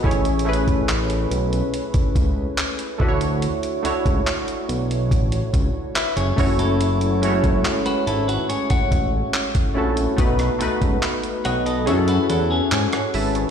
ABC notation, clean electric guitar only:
X:1
M:4/4
L:1/16
Q:1/4=71
K:F#m
V:1 name="Clean electric guitar"
z16 | z12 [Be] [Gc]2 [EA]- | [EA]4- [EA] [FB] [EA] [FB] [Gc] [cf]6 z | z6 [cf] [A^d] [Gc] [FB] [EA] [CG]4- [CG] |]